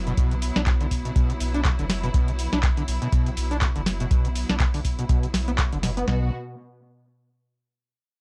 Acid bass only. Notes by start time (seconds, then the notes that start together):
0.07 B2
0.17 B2
0.31 C3
0.56 D4
0.67 B2
0.81 D3
1.05 B2
1.16 B2
1.30 C3
1.54 D4
1.65 B2
1.79 D3
2.04 B2
2.14 B2
2.28 C3
2.53 D4
2.63 B2
2.77 D3
3.02 B2
3.13 B2
3.27 C3
3.51 D4
3.62 B2
3.76 D3
4.00 B2
4.11 B2
4.25 C3
4.49 D4
4.60 B2
4.74 D3
4.99 B2
5.09 B2
5.23 C3
5.48 B3
5.72 D3
5.83 B2
5.97 B3
6.08 B2